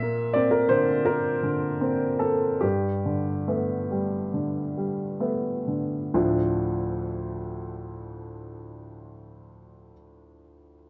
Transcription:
Already playing: A#2 E5
0.03 A#3
0.33 A#3 C4 D5
0.51 A#4
0.69 D3 C5
1.05 A#3 A#4
1.43 D3
1.81 A#3 C4
2.19 A#3 A4
2.61 G2 G4
3.06 D3
3.48 A3 B3
3.91 G3
4.34 D3
4.77 G3
5.20 A3 B3
5.68 D3
6.14 D2 A2 F3 A3 D4 F4

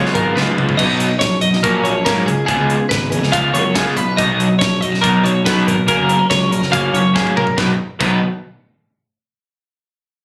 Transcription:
Already playing: C#3 F#3 G#3 B3 D#4 F4 G#4 C#5
0.06 snare
0.14 G#1 G#3 B3 D#4 F4 A#4, kick, closed hi-hat
0.35 C#2 C#3 G#3 B3 F4 B4, snare
0.47 high tom
0.56 C#2 C#3 G#3 B3 F4, mid tom
0.69 floor tom
0.77 B1 B2 F#3 B3 D#4 D#5, kick, crash
0.89 B1
1.00 D#4, closed hi-hat
1.19 A#1 F#3 C#5, kick, snare, closed hi-hat
1.41 F#2 D#4 D#5, closed hi-hat
1.53 B1, snare
1.63 A#1 A#2 F#3 A#3 C#4 A#4, kick, closed hi-hat
1.84 A#1 C#4 C#5, closed hi-hat
2.05 G#2 A#2 F#3 A#3 C#4 A#4, kick, snare, closed hi-hat
2.26 C#2 C#3 G#4, closed hi-hat
2.46 C#2 C#3 G#3 B3 F4 G#4, kick, closed hi-hat
2.59 C#2
2.70 G#3, closed hi-hat
2.89 G#1 B3 B4, kick, snare, closed hi-hat
3.10 F2 D#4 G#4, closed hi-hat
3.22 C#2 F4, snare
3.32 C#3 G#3 B3 F4 F5, kick, closed hi-hat
3.53 F#2 B3 C#5, closed hi-hat
3.75 C#3 G#3 B3 F4 G#4, kick, snare, closed hi-hat
3.96 B1 B2 B4, closed hi-hat
4.17 B2 F#3 B3 D#4 D#5, kick, closed hi-hat
4.29 B1
4.39 F#3, closed hi-hat
4.59 A#1 D#4 C#5, kick, snare, closed hi-hat
4.81 F#2 D#4 D#5, closed hi-hat
4.92 B1 F#4, snare
5.01 B2 F#3 B3 D#4 A#4, kick, closed hi-hat
5.24 B1 D#4 C#5, closed hi-hat
5.45 B1 B2 F#3 B3 D#4 B4, kick, snare, closed hi-hat
5.67 G#1 B2 A#4, closed hi-hat
5.87 F#1 F#2 C#3 F#3 A#3 C#4 A#4, kick, closed hi-hat
5.99 F#1
6.09 B3, closed hi-hat
6.19 C#4
6.29 C#2 F#3 C#5, kick, snare, closed hi-hat
6.51 A#1 C#4 A#4, closed hi-hat
6.62 F#1, snare
6.71 C#3 F#3 A#3 C#4 F4 F5, kick, closed hi-hat
6.94 F#1 F#3 C#5, closed hi-hat
7.14 G#2 C#3 F#3 A#3 C#4 G#4, kick, snare
7.27 high tom
7.37 A#2 A#4, mid tom
7.47 floor tom
7.57 B1 B2 D#3 F#3 B3 D#4 F#4 A#4 B4, kick, snare
7.99 B1 B2 D#3 F#3 B3 D#4 F#4 A#4 B4, kick, crash

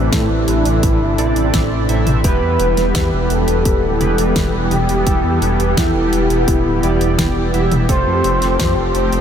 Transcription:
Already playing: A1 C3 E3 A3 C4 D4 E4 A4 B4
0.12 A2 E4, kick, snare, closed hi-hat
0.30 A1
0.48 A1, closed hi-hat
0.66 A1, closed hi-hat
0.83 A1, kick, closed hi-hat
1.01 G1
1.18 A1 C4 E4 A4 D5, closed hi-hat
1.36 A1, closed hi-hat
1.54 A1, kick, snare, closed hi-hat
1.71 A1
1.89 A1 C4 E4 A4 E5, closed hi-hat
2.07 A1, closed hi-hat, mid tom
2.24 E1 E3 G3 B3 E4 G4 B4, kick, closed hi-hat
2.42 E2
2.60 E1, closed hi-hat
2.77 E1, snare, closed hi-hat
2.95 E2, kick, snare, closed hi-hat
3.13 E1
3.30 E1 A4, closed hi-hat
3.48 E1, closed hi-hat
3.65 E1, kick, closed hi-hat
3.83 D1
4.01 E1 B3 E4 G4 B4, closed hi-hat, mid tom
4.18 E1, closed hi-hat
4.36 E1, kick, snare, closed hi-hat
4.54 E1
4.71 E1 G4, closed hi-hat, mid tom
4.89 E1, closed hi-hat
5.07 E1 B3 E4 G4 A4, kick, closed hi-hat
5.24 E2
5.42 E1, closed hi-hat
5.60 E1, closed hi-hat
5.77 E2 E4, kick, snare, closed hi-hat
5.95 E1
6.13 E1, closed hi-hat
6.30 E1, closed hi-hat
6.48 E1, kick, closed hi-hat
6.65 D1
6.83 E1 B3 E4 G4 D5, closed hi-hat
7.01 E1, closed hi-hat
7.19 E1, kick, snare, closed hi-hat
7.36 E1
7.54 E1 B3 E4 G4 E5, closed hi-hat
7.72 E1, closed hi-hat, mid tom
7.89 F1 F3 A3 C4 F4 G4 A4 C5, kick, closed hi-hat
8.07 F2
8.24 F1, closed hi-hat
8.42 F1, snare, closed hi-hat
8.60 F2, kick, snare, closed hi-hat
8.77 F1
8.95 F1 C5, closed hi-hat
9.12 F1, closed hi-hat

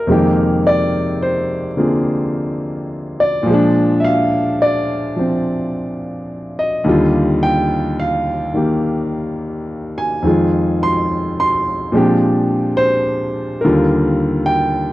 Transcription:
Already playing: A#4
0.07 F2 C3 G#3 A#3
0.11 D#3 G4
0.67 D5
1.22 C5
1.77 D3 A#3 C4 F4 G#4
3.20 D5
3.43 A#2 F3
3.50 G#3
3.54 D4
4.00 E5
4.04 F5
4.62 D5
5.16 F3 C4
6.59 D#5
6.84 D#2 D3 G3
6.89 F4
7.43 G5
8.00 F5
8.54 D#3 A#3 G4
9.98 G#5
10.22 F2 D#3 G#3
10.27 F4
10.83 C6
11.40 C6
11.92 A#2 F3 G#3 C4
11.96 D4 G4
12.77 C5
13.61 D#2 D3 G3 A#4
13.65 F4
14.46 G5

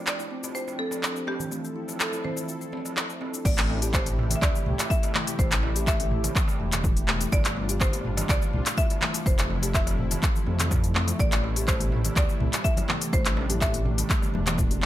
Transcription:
Already playing: F3 C4 D4 G4
0.07 D5, clap, shaker
0.19 E4, darbuka tek, shaker
0.31 C4
0.44 darbuka tek, shaker
0.55 E4 C5, shaker
0.68 darbuka tek, shaker
0.79 C4 A4
0.91 darbuka ka, shaker
1.03 A4, clap, darbuka tek, shaker
1.16 shaker
1.27 C4 G4, darbuka ka, darbuka tek
1.40 D4, darbuka dum, shaker
1.51 A3 E4 A4, darbuka tek, shaker
1.65 shaker
1.76 E4
1.88 darbuka ka, darbuka tek, shaker
2.00 A4, clap, shaker
2.12 E4, darbuka tek, shaker
2.24 C4 C5, darbuka dum
2.37 darbuka tek, shaker
2.48 E4, shaker
2.61 shaker
2.72 C4, darbuka ka, darbuka tek
2.85 darbuka ka, shaker
2.96 A4, clap, darbuka tek, shaker
3.10 shaker
3.21 C4, darbuka ka, darbuka tek
3.33 D4, shaker
3.45 A1 C3 A3 E4 G4 D5, kick, crash, shaker
3.58 clap, closed hi-hat, shaker
3.69 A3, darbuka ka, darbuka tek
3.82 G4, closed hi-hat, shaker
3.93 C5, kick, clap, darbuka tek, shaker
4.06 A3, closed hi-hat, shaker
4.18 mid tom, darbuka tek
4.30 closed hi-hat, darbuka ka, darbuka dum, shaker
4.36 E5
4.42 D2 D5, kick, clap, shaker
4.55 darbuka tek, shaker
4.66 C2 A3, mid tom
4.79 clap, closed hi-hat, darbuka tek, shaker
4.90 E4 E5, kick, shaker
5.03 closed hi-hat, darbuka ka, darbuka tek, shaker
5.15 A3, clap, darbuka dum
5.27 E3, closed hi-hat, shaker
5.39 A1 A3 C5, kick, darbuka tek, shaker
5.52 clap, closed hi-hat, shaker
5.63 A3, darbuka ka, darbuka tek
5.75 G4, closed hi-hat, shaker
5.87 E5, kick, clap, darbuka tek, shaker
6.00 A3, closed hi-hat, shaker
6.11 mid tom
6.24 closed hi-hat, darbuka ka, darbuka tek, darbuka dum, shaker
6.36 kick, clap, shaker
6.48 darbuka tek, shaker
6.60 E1 A3
6.72 clap, closed hi-hat, darbuka tek, darbuka dum, shaker
6.84 E4, kick, mid tom, shaker
6.97 closed hi-hat, shaker
7.08 A3, clap, darbuka tek
7.21 E3, closed hi-hat, shaker
7.32 G1 C3 G3 A3 D4 F4 D5, kick, darbuka tek, shaker
7.45 clap, closed hi-hat, shaker
7.56 A3, darbuka ka, darbuka tek
7.69 G4, closed hi-hat, shaker
7.81 C5, kick, clap, shaker
7.93 A3, closed hi-hat, darbuka tek, shaker
8.05 mid tom
8.17 closed hi-hat, darbuka ka, darbuka tek, darbuka dum, shaker
8.29 C2 D5, kick, clap, shaker
8.42 darbuka tek, shaker
8.53 C2 A3, mid tom
8.66 clap, closed hi-hat, shaker
8.78 E4 E5, kick, darbuka tek, shaker
8.90 closed hi-hat, darbuka ka, shaker
9.02 A3, clap, darbuka tek, darbuka dum
9.14 E3, closed hi-hat, shaker
9.26 F1 F3 A3 E4 C5, kick, darbuka tek, shaker
9.39 clap, closed hi-hat, shaker
9.50 A3, darbuka ka
9.63 G4, closed hi-hat, darbuka tek, shaker
9.74 E5, kick, clap, shaker
9.87 A3, closed hi-hat, darbuka tek, shaker
9.98 mid tom
10.11 closed hi-hat, darbuka ka, darbuka tek, darbuka dum, shaker
10.23 kick, clap, shaker
10.36 shaker
10.46 F2 A3, darbuka tek
10.59 clap, closed hi-hat, darbuka dum, shaker
10.71 E4, kick, mid tom, darbuka tek, shaker
10.84 closed hi-hat, shaker
10.95 A3, clap, darbuka tek
11.08 E3, closed hi-hat, shaker
11.19 A1 G3 A3 E4 D5, kick, shaker
11.32 clap, closed hi-hat, shaker
11.44 A3, darbuka ka, darbuka tek
11.56 G4, closed hi-hat, shaker
11.68 C5, kick, clap, darbuka tek, shaker
11.80 A3, closed hi-hat, high conga, shaker
11.92 mid tom, darbuka tek
12.05 closed hi-hat, darbuka ka, darbuka dum, shaker
12.16 D2 D5, kick, clap, high conga, shaker
12.29 darbuka tek, shaker
12.40 C2 A3, mid tom
12.53 clap, closed hi-hat, darbuka tek, shaker
12.64 E4 E5, kick, shaker
12.77 closed hi-hat, darbuka ka, darbuka tek, low conga, shaker
12.89 A3, clap, high conga, darbuka dum
13.01 E3, closed hi-hat, shaker
13.13 A1 A3 D4 C5, kick, darbuka tek, shaker
13.25 clap, closed hi-hat, shaker
13.37 A3, darbuka ka, darbuka tek
13.50 G4, closed hi-hat, low conga, shaker
13.61 E5, kick, clap, darbuka tek, shaker
13.73 A3, closed hi-hat, high conga, shaker
13.86 mid tom
13.98 closed hi-hat, darbuka ka, darbuka tek, darbuka dum, shaker
14.10 kick, clap, shaker
14.22 darbuka tek, high conga, shaker
14.34 E1 A3, high conga, low conga
14.47 clap, closed hi-hat, darbuka tek, high conga, darbuka dum, shaker
14.58 E4, kick, mid tom, shaker
14.71 closed hi-hat, high conga, shaker
14.82 A3, clap, darbuka tek

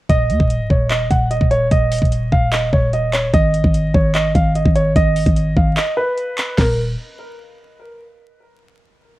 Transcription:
0.09 D#1 D#5, kick, closed hi-hat
0.30 D#2, closed hi-hat
0.40 D#1, kick
0.50 closed hi-hat
0.60 C#1
0.70 D#1 C#5, kick
0.90 D#5, clap, closed hi-hat
1.11 D#1 F#5, kick, closed hi-hat
1.31 D#5, closed hi-hat
1.41 D#1, kick
1.51 C#5, closed hi-hat
1.71 D#1 D#5, kick, closed hi-hat
1.92 closed hi-hat, open hi-hat
1.99 D#1, kick, closed hi-hat
2.05 closed hi-hat
2.12 closed hi-hat
2.32 D#1 F5, kick
2.52 D#5, clap, closed hi-hat
2.73 D#1 C#5, kick
2.93 D#5, closed hi-hat
3.13 C#5, clap, closed hi-hat
3.34 G#1 D#5, kick, closed hi-hat
3.54 closed hi-hat
3.64 G#1, kick
3.74 closed hi-hat
3.94 G#1 C#5, kick
4.15 D#5, clap, closed hi-hat
4.35 G#1 F5, kick, closed hi-hat
4.55 D#5, closed hi-hat
4.65 G#1, kick
4.75 C#5, closed hi-hat
4.96 G#1 D#5, kick, closed hi-hat
5.16 closed hi-hat, open hi-hat
5.26 G#1, kick, closed hi-hat
5.36 closed hi-hat
5.57 G#1 F5, kick
5.77 D#5, clap, closed hi-hat
5.97 B4
6.17 closed hi-hat
6.38 clap, closed hi-hat
6.58 D#1 A#4, kick, snare, crash

